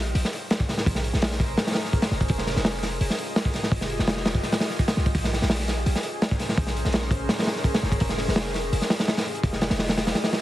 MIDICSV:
0, 0, Header, 1, 4, 480
1, 0, Start_track
1, 0, Tempo, 357143
1, 1159, Time_signature, 4, 2, 24, 8
1, 14000, End_track
2, 0, Start_track
2, 0, Title_t, "Ambient pad"
2, 0, Program_c, 0, 92
2, 0, Note_on_c, 0, 61, 79
2, 0, Note_on_c, 0, 68, 74
2, 0, Note_on_c, 0, 70, 73
2, 0, Note_on_c, 0, 72, 89
2, 3039, Note_off_c, 0, 61, 0
2, 3039, Note_off_c, 0, 70, 0
2, 3041, Note_off_c, 0, 72, 0
2, 3079, Note_on_c, 0, 67, 76
2, 3080, Note_on_c, 0, 65, 82
2, 3085, Note_on_c, 0, 75, 89
2, 6865, Note_off_c, 0, 68, 0
2, 6881, Note_off_c, 0, 65, 0
2, 6881, Note_off_c, 0, 67, 0
2, 6883, Note_off_c, 0, 75, 0
2, 6913, Note_on_c, 0, 72, 89
2, 6916, Note_on_c, 0, 61, 77
2, 6917, Note_on_c, 0, 70, 72
2, 6918, Note_on_c, 0, 68, 75
2, 10717, Note_off_c, 0, 72, 0
2, 10719, Note_off_c, 0, 61, 0
2, 10720, Note_off_c, 0, 70, 0
2, 10762, Note_on_c, 0, 65, 82
2, 10766, Note_on_c, 0, 67, 74
2, 10767, Note_on_c, 0, 75, 89
2, 14000, Note_off_c, 0, 65, 0
2, 14000, Note_off_c, 0, 67, 0
2, 14000, Note_off_c, 0, 68, 0
2, 14000, Note_off_c, 0, 75, 0
2, 14000, End_track
3, 0, Start_track
3, 0, Title_t, "808-style bass"
3, 0, Program_c, 1, 38
3, 0, Note_on_c, 1, 34, 88
3, 181, Note_off_c, 1, 34, 0
3, 199, Note_on_c, 1, 34, 86
3, 311, Note_off_c, 1, 34, 0
3, 1161, Note_on_c, 1, 34, 101
3, 1504, Note_off_c, 1, 34, 0
3, 1527, Note_on_c, 1, 34, 85
3, 2102, Note_off_c, 1, 34, 0
3, 2841, Note_on_c, 1, 29, 96
3, 3057, Note_off_c, 1, 29, 0
3, 3086, Note_on_c, 1, 29, 102
3, 3427, Note_off_c, 1, 29, 0
3, 3446, Note_on_c, 1, 29, 89
3, 4022, Note_off_c, 1, 29, 0
3, 4041, Note_on_c, 1, 29, 87
3, 4152, Note_off_c, 1, 29, 0
3, 4996, Note_on_c, 1, 29, 99
3, 5342, Note_off_c, 1, 29, 0
3, 5366, Note_on_c, 1, 29, 88
3, 5941, Note_off_c, 1, 29, 0
3, 6680, Note_on_c, 1, 36, 96
3, 6896, Note_off_c, 1, 36, 0
3, 6919, Note_on_c, 1, 34, 101
3, 7264, Note_off_c, 1, 34, 0
3, 7286, Note_on_c, 1, 34, 85
3, 7861, Note_off_c, 1, 34, 0
3, 7879, Note_on_c, 1, 34, 85
3, 7991, Note_off_c, 1, 34, 0
3, 8840, Note_on_c, 1, 34, 103
3, 9184, Note_off_c, 1, 34, 0
3, 9206, Note_on_c, 1, 34, 86
3, 9781, Note_off_c, 1, 34, 0
3, 10523, Note_on_c, 1, 29, 96
3, 10738, Note_off_c, 1, 29, 0
3, 10767, Note_on_c, 1, 29, 99
3, 11108, Note_off_c, 1, 29, 0
3, 11131, Note_on_c, 1, 29, 87
3, 11704, Note_off_c, 1, 29, 0
3, 11727, Note_on_c, 1, 29, 87
3, 11835, Note_off_c, 1, 29, 0
3, 12679, Note_on_c, 1, 29, 103
3, 13024, Note_off_c, 1, 29, 0
3, 13049, Note_on_c, 1, 29, 84
3, 13623, Note_off_c, 1, 29, 0
3, 14000, End_track
4, 0, Start_track
4, 0, Title_t, "Drums"
4, 202, Note_on_c, 9, 46, 88
4, 331, Note_on_c, 9, 38, 46
4, 337, Note_off_c, 9, 46, 0
4, 442, Note_on_c, 9, 46, 73
4, 466, Note_off_c, 9, 38, 0
4, 576, Note_off_c, 9, 46, 0
4, 679, Note_on_c, 9, 46, 88
4, 683, Note_on_c, 9, 38, 112
4, 806, Note_on_c, 9, 36, 95
4, 813, Note_off_c, 9, 46, 0
4, 817, Note_off_c, 9, 38, 0
4, 925, Note_on_c, 9, 38, 52
4, 927, Note_on_c, 9, 46, 72
4, 940, Note_off_c, 9, 36, 0
4, 1043, Note_off_c, 9, 38, 0
4, 1043, Note_on_c, 9, 38, 57
4, 1062, Note_off_c, 9, 46, 0
4, 1160, Note_on_c, 9, 36, 110
4, 1166, Note_on_c, 9, 46, 92
4, 1177, Note_off_c, 9, 38, 0
4, 1279, Note_on_c, 9, 38, 54
4, 1295, Note_off_c, 9, 36, 0
4, 1301, Note_off_c, 9, 46, 0
4, 1398, Note_on_c, 9, 46, 67
4, 1413, Note_off_c, 9, 38, 0
4, 1525, Note_on_c, 9, 38, 41
4, 1533, Note_off_c, 9, 46, 0
4, 1639, Note_on_c, 9, 46, 93
4, 1647, Note_off_c, 9, 38, 0
4, 1647, Note_on_c, 9, 38, 125
4, 1765, Note_off_c, 9, 38, 0
4, 1765, Note_on_c, 9, 38, 51
4, 1773, Note_off_c, 9, 46, 0
4, 1880, Note_on_c, 9, 36, 93
4, 1895, Note_on_c, 9, 46, 72
4, 1899, Note_off_c, 9, 38, 0
4, 2014, Note_off_c, 9, 36, 0
4, 2029, Note_off_c, 9, 46, 0
4, 2114, Note_on_c, 9, 46, 71
4, 2117, Note_on_c, 9, 38, 110
4, 2242, Note_off_c, 9, 38, 0
4, 2242, Note_on_c, 9, 38, 92
4, 2248, Note_off_c, 9, 46, 0
4, 2249, Note_on_c, 9, 46, 69
4, 2297, Note_off_c, 9, 46, 0
4, 2297, Note_on_c, 9, 46, 68
4, 2303, Note_off_c, 9, 38, 0
4, 2303, Note_on_c, 9, 38, 81
4, 2348, Note_off_c, 9, 38, 0
4, 2348, Note_on_c, 9, 38, 106
4, 2359, Note_off_c, 9, 46, 0
4, 2359, Note_on_c, 9, 46, 83
4, 2482, Note_off_c, 9, 38, 0
4, 2485, Note_on_c, 9, 38, 45
4, 2494, Note_off_c, 9, 46, 0
4, 2590, Note_on_c, 9, 46, 60
4, 2596, Note_on_c, 9, 36, 95
4, 2620, Note_off_c, 9, 38, 0
4, 2715, Note_off_c, 9, 46, 0
4, 2715, Note_on_c, 9, 46, 88
4, 2718, Note_on_c, 9, 38, 115
4, 2730, Note_off_c, 9, 36, 0
4, 2842, Note_off_c, 9, 38, 0
4, 2842, Note_on_c, 9, 38, 45
4, 2850, Note_off_c, 9, 46, 0
4, 2959, Note_on_c, 9, 46, 58
4, 2966, Note_on_c, 9, 36, 88
4, 2977, Note_off_c, 9, 38, 0
4, 3070, Note_off_c, 9, 46, 0
4, 3070, Note_on_c, 9, 46, 85
4, 3087, Note_off_c, 9, 36, 0
4, 3087, Note_on_c, 9, 36, 117
4, 3202, Note_on_c, 9, 38, 56
4, 3204, Note_off_c, 9, 46, 0
4, 3221, Note_off_c, 9, 36, 0
4, 3314, Note_off_c, 9, 38, 0
4, 3314, Note_on_c, 9, 38, 43
4, 3323, Note_on_c, 9, 46, 81
4, 3446, Note_off_c, 9, 38, 0
4, 3446, Note_on_c, 9, 38, 48
4, 3458, Note_off_c, 9, 46, 0
4, 3559, Note_off_c, 9, 38, 0
4, 3559, Note_on_c, 9, 38, 127
4, 3559, Note_on_c, 9, 46, 81
4, 3678, Note_off_c, 9, 38, 0
4, 3678, Note_on_c, 9, 38, 43
4, 3693, Note_off_c, 9, 46, 0
4, 3799, Note_off_c, 9, 38, 0
4, 3799, Note_on_c, 9, 38, 51
4, 3800, Note_on_c, 9, 46, 74
4, 3934, Note_off_c, 9, 38, 0
4, 3935, Note_off_c, 9, 46, 0
4, 4041, Note_on_c, 9, 46, 86
4, 4171, Note_on_c, 9, 38, 49
4, 4175, Note_off_c, 9, 46, 0
4, 4280, Note_on_c, 9, 46, 67
4, 4305, Note_off_c, 9, 38, 0
4, 4415, Note_off_c, 9, 46, 0
4, 4518, Note_on_c, 9, 38, 124
4, 4521, Note_on_c, 9, 46, 91
4, 4639, Note_on_c, 9, 36, 104
4, 4652, Note_off_c, 9, 38, 0
4, 4655, Note_off_c, 9, 46, 0
4, 4752, Note_on_c, 9, 46, 67
4, 4761, Note_on_c, 9, 38, 54
4, 4774, Note_off_c, 9, 36, 0
4, 4882, Note_off_c, 9, 38, 0
4, 4882, Note_on_c, 9, 38, 58
4, 4887, Note_off_c, 9, 46, 0
4, 4994, Note_on_c, 9, 36, 108
4, 5004, Note_on_c, 9, 46, 98
4, 5017, Note_off_c, 9, 38, 0
4, 5122, Note_on_c, 9, 38, 55
4, 5128, Note_off_c, 9, 36, 0
4, 5138, Note_off_c, 9, 46, 0
4, 5237, Note_on_c, 9, 46, 71
4, 5257, Note_off_c, 9, 38, 0
4, 5368, Note_on_c, 9, 38, 44
4, 5371, Note_off_c, 9, 46, 0
4, 5471, Note_on_c, 9, 46, 80
4, 5477, Note_off_c, 9, 38, 0
4, 5477, Note_on_c, 9, 38, 122
4, 5594, Note_off_c, 9, 38, 0
4, 5594, Note_on_c, 9, 38, 53
4, 5606, Note_off_c, 9, 46, 0
4, 5717, Note_on_c, 9, 46, 79
4, 5720, Note_off_c, 9, 38, 0
4, 5720, Note_on_c, 9, 38, 110
4, 5842, Note_on_c, 9, 36, 90
4, 5851, Note_off_c, 9, 46, 0
4, 5854, Note_off_c, 9, 38, 0
4, 5956, Note_on_c, 9, 38, 51
4, 5960, Note_on_c, 9, 46, 67
4, 5976, Note_off_c, 9, 36, 0
4, 6079, Note_off_c, 9, 46, 0
4, 6079, Note_on_c, 9, 46, 85
4, 6082, Note_off_c, 9, 38, 0
4, 6082, Note_on_c, 9, 38, 99
4, 6188, Note_off_c, 9, 38, 0
4, 6188, Note_on_c, 9, 38, 107
4, 6200, Note_off_c, 9, 46, 0
4, 6200, Note_on_c, 9, 46, 84
4, 6319, Note_off_c, 9, 38, 0
4, 6319, Note_on_c, 9, 38, 47
4, 6335, Note_off_c, 9, 46, 0
4, 6441, Note_on_c, 9, 36, 88
4, 6441, Note_on_c, 9, 46, 64
4, 6454, Note_off_c, 9, 38, 0
4, 6558, Note_off_c, 9, 46, 0
4, 6558, Note_on_c, 9, 38, 115
4, 6558, Note_on_c, 9, 46, 87
4, 6575, Note_off_c, 9, 36, 0
4, 6675, Note_off_c, 9, 38, 0
4, 6675, Note_on_c, 9, 38, 44
4, 6692, Note_off_c, 9, 46, 0
4, 6800, Note_on_c, 9, 46, 57
4, 6802, Note_on_c, 9, 36, 94
4, 6809, Note_off_c, 9, 38, 0
4, 6918, Note_off_c, 9, 36, 0
4, 6918, Note_off_c, 9, 46, 0
4, 6918, Note_on_c, 9, 36, 102
4, 6918, Note_on_c, 9, 46, 95
4, 7047, Note_on_c, 9, 38, 57
4, 7052, Note_off_c, 9, 36, 0
4, 7052, Note_off_c, 9, 46, 0
4, 7159, Note_on_c, 9, 46, 77
4, 7167, Note_off_c, 9, 38, 0
4, 7167, Note_on_c, 9, 38, 46
4, 7285, Note_off_c, 9, 38, 0
4, 7285, Note_on_c, 9, 38, 49
4, 7294, Note_off_c, 9, 46, 0
4, 7387, Note_off_c, 9, 38, 0
4, 7387, Note_on_c, 9, 38, 114
4, 7402, Note_on_c, 9, 46, 96
4, 7521, Note_off_c, 9, 38, 0
4, 7522, Note_on_c, 9, 38, 43
4, 7536, Note_off_c, 9, 46, 0
4, 7633, Note_on_c, 9, 46, 71
4, 7635, Note_off_c, 9, 38, 0
4, 7635, Note_on_c, 9, 38, 46
4, 7767, Note_off_c, 9, 46, 0
4, 7770, Note_off_c, 9, 38, 0
4, 7878, Note_on_c, 9, 46, 82
4, 8003, Note_on_c, 9, 38, 44
4, 8012, Note_off_c, 9, 46, 0
4, 8105, Note_on_c, 9, 46, 69
4, 8138, Note_off_c, 9, 38, 0
4, 8239, Note_off_c, 9, 46, 0
4, 8358, Note_on_c, 9, 46, 82
4, 8360, Note_on_c, 9, 38, 127
4, 8486, Note_on_c, 9, 36, 99
4, 8492, Note_off_c, 9, 46, 0
4, 8494, Note_off_c, 9, 38, 0
4, 8595, Note_on_c, 9, 46, 64
4, 8602, Note_on_c, 9, 38, 53
4, 8621, Note_off_c, 9, 36, 0
4, 8723, Note_off_c, 9, 38, 0
4, 8723, Note_on_c, 9, 38, 60
4, 8729, Note_off_c, 9, 46, 0
4, 8837, Note_on_c, 9, 36, 117
4, 8840, Note_on_c, 9, 46, 89
4, 8858, Note_off_c, 9, 38, 0
4, 8959, Note_on_c, 9, 38, 55
4, 8972, Note_off_c, 9, 36, 0
4, 8975, Note_off_c, 9, 46, 0
4, 9094, Note_off_c, 9, 38, 0
4, 9094, Note_on_c, 9, 46, 67
4, 9204, Note_on_c, 9, 38, 42
4, 9228, Note_off_c, 9, 46, 0
4, 9307, Note_on_c, 9, 46, 81
4, 9326, Note_off_c, 9, 38, 0
4, 9326, Note_on_c, 9, 38, 124
4, 9436, Note_off_c, 9, 38, 0
4, 9436, Note_on_c, 9, 38, 52
4, 9442, Note_off_c, 9, 46, 0
4, 9552, Note_on_c, 9, 36, 97
4, 9559, Note_on_c, 9, 46, 67
4, 9570, Note_off_c, 9, 38, 0
4, 9686, Note_off_c, 9, 36, 0
4, 9694, Note_off_c, 9, 46, 0
4, 9797, Note_on_c, 9, 38, 112
4, 9804, Note_on_c, 9, 46, 74
4, 9925, Note_off_c, 9, 46, 0
4, 9925, Note_on_c, 9, 46, 71
4, 9931, Note_off_c, 9, 38, 0
4, 9934, Note_on_c, 9, 38, 93
4, 9978, Note_off_c, 9, 38, 0
4, 9978, Note_on_c, 9, 38, 88
4, 9983, Note_off_c, 9, 46, 0
4, 9983, Note_on_c, 9, 46, 64
4, 10037, Note_off_c, 9, 46, 0
4, 10037, Note_on_c, 9, 46, 75
4, 10038, Note_off_c, 9, 38, 0
4, 10038, Note_on_c, 9, 38, 104
4, 10159, Note_off_c, 9, 38, 0
4, 10159, Note_on_c, 9, 38, 45
4, 10172, Note_off_c, 9, 46, 0
4, 10271, Note_on_c, 9, 36, 87
4, 10277, Note_on_c, 9, 46, 63
4, 10293, Note_off_c, 9, 38, 0
4, 10406, Note_off_c, 9, 36, 0
4, 10408, Note_off_c, 9, 46, 0
4, 10408, Note_on_c, 9, 46, 83
4, 10409, Note_on_c, 9, 38, 117
4, 10527, Note_off_c, 9, 38, 0
4, 10527, Note_on_c, 9, 38, 47
4, 10543, Note_off_c, 9, 46, 0
4, 10640, Note_on_c, 9, 36, 82
4, 10646, Note_on_c, 9, 46, 60
4, 10661, Note_off_c, 9, 38, 0
4, 10754, Note_off_c, 9, 46, 0
4, 10754, Note_on_c, 9, 46, 96
4, 10766, Note_off_c, 9, 36, 0
4, 10766, Note_on_c, 9, 36, 107
4, 10877, Note_on_c, 9, 38, 58
4, 10888, Note_off_c, 9, 46, 0
4, 10901, Note_off_c, 9, 36, 0
4, 10989, Note_off_c, 9, 38, 0
4, 10989, Note_on_c, 9, 38, 42
4, 10999, Note_on_c, 9, 46, 74
4, 11123, Note_off_c, 9, 38, 0
4, 11133, Note_off_c, 9, 46, 0
4, 11135, Note_on_c, 9, 38, 46
4, 11235, Note_off_c, 9, 38, 0
4, 11235, Note_on_c, 9, 38, 121
4, 11236, Note_on_c, 9, 46, 87
4, 11363, Note_off_c, 9, 38, 0
4, 11363, Note_on_c, 9, 38, 44
4, 11371, Note_off_c, 9, 46, 0
4, 11481, Note_on_c, 9, 46, 74
4, 11485, Note_off_c, 9, 38, 0
4, 11485, Note_on_c, 9, 38, 47
4, 11615, Note_off_c, 9, 46, 0
4, 11619, Note_off_c, 9, 38, 0
4, 11730, Note_on_c, 9, 46, 93
4, 11849, Note_on_c, 9, 38, 44
4, 11864, Note_off_c, 9, 46, 0
4, 11963, Note_off_c, 9, 38, 0
4, 11963, Note_on_c, 9, 38, 99
4, 11968, Note_on_c, 9, 46, 84
4, 12081, Note_off_c, 9, 46, 0
4, 12081, Note_on_c, 9, 46, 76
4, 12090, Note_off_c, 9, 38, 0
4, 12090, Note_on_c, 9, 38, 101
4, 12203, Note_off_c, 9, 38, 0
4, 12203, Note_on_c, 9, 38, 111
4, 12204, Note_off_c, 9, 46, 0
4, 12204, Note_on_c, 9, 46, 74
4, 12326, Note_off_c, 9, 46, 0
4, 12326, Note_on_c, 9, 46, 77
4, 12329, Note_off_c, 9, 38, 0
4, 12329, Note_on_c, 9, 38, 103
4, 12439, Note_off_c, 9, 46, 0
4, 12439, Note_on_c, 9, 46, 73
4, 12463, Note_off_c, 9, 38, 0
4, 12566, Note_on_c, 9, 42, 44
4, 12574, Note_off_c, 9, 46, 0
4, 12680, Note_on_c, 9, 36, 109
4, 12684, Note_on_c, 9, 46, 96
4, 12700, Note_off_c, 9, 42, 0
4, 12804, Note_on_c, 9, 38, 53
4, 12814, Note_off_c, 9, 36, 0
4, 12818, Note_off_c, 9, 46, 0
4, 12919, Note_on_c, 9, 46, 74
4, 12926, Note_off_c, 9, 38, 0
4, 12926, Note_on_c, 9, 38, 99
4, 13039, Note_off_c, 9, 38, 0
4, 13039, Note_on_c, 9, 38, 104
4, 13052, Note_off_c, 9, 46, 0
4, 13052, Note_on_c, 9, 46, 75
4, 13154, Note_off_c, 9, 38, 0
4, 13154, Note_on_c, 9, 38, 99
4, 13173, Note_off_c, 9, 46, 0
4, 13173, Note_on_c, 9, 46, 77
4, 13286, Note_off_c, 9, 46, 0
4, 13286, Note_on_c, 9, 46, 81
4, 13289, Note_off_c, 9, 38, 0
4, 13295, Note_on_c, 9, 38, 106
4, 13406, Note_off_c, 9, 46, 0
4, 13406, Note_on_c, 9, 46, 79
4, 13407, Note_off_c, 9, 38, 0
4, 13407, Note_on_c, 9, 38, 102
4, 13531, Note_off_c, 9, 46, 0
4, 13531, Note_on_c, 9, 46, 77
4, 13532, Note_off_c, 9, 38, 0
4, 13532, Note_on_c, 9, 38, 101
4, 13643, Note_off_c, 9, 38, 0
4, 13643, Note_off_c, 9, 46, 0
4, 13643, Note_on_c, 9, 38, 99
4, 13643, Note_on_c, 9, 46, 85
4, 13760, Note_off_c, 9, 38, 0
4, 13760, Note_on_c, 9, 38, 96
4, 13768, Note_off_c, 9, 46, 0
4, 13768, Note_on_c, 9, 46, 74
4, 13880, Note_off_c, 9, 46, 0
4, 13880, Note_on_c, 9, 46, 80
4, 13881, Note_off_c, 9, 38, 0
4, 13881, Note_on_c, 9, 38, 97
4, 14000, Note_off_c, 9, 38, 0
4, 14000, Note_off_c, 9, 46, 0
4, 14000, End_track
0, 0, End_of_file